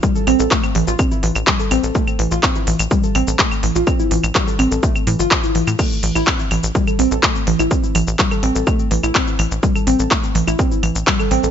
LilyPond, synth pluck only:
\new Staff \with { instrumentName = "Synth pluck" } { \time 4/4 \key a \minor \tempo 4 = 125 g16 a'16 c'16 a'16 a16 r16 e16 f'16 c'16 e'16 e16 r16 g16 a'16 c'16 a'16 | a16 r16 e16 f'16 c'16 e'16 e16 r16 g16 a'16 c'16 a'16 a16 r16 e16 f'16 | c'16 e'16 e16 r16 g16 a'16 c'16 a'16 a16 r16 e16 f'16 c'16 e'16 e16 r16 | a16 r16 e16 e'16 c'16 e'16 e16 r16 g16 a'16 c'16 a'16 a16 r16 e16 e'16 |
c'16 e'16 e16 r16 g16 a'16 c'16 a'16 a16 r16 e16 e'16 c'16 e'16 e16 r16 | g16 a'16 c'16 a'16 a16 r16 e16 e'16 c'16 e'16 e16 r16 g16 a'16 c'16 a'16 | }